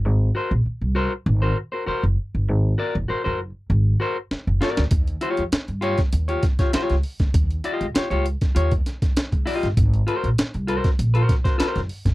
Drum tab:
HH |----------------|----------------|xxxxxxxxxxxxxxox|xxxxxxxxxxxxxxox|
SD |----------------|------------o-oo|----o--o--oooo-o|----o--o--ooo--o|
BD |----------------|----------------|o------o--oo---o|o------o-o-o-o--|

HH |xxxxxxxxxxxxxxox|
SD |----o--o--oooo-o|
BD |o------o--oo---o|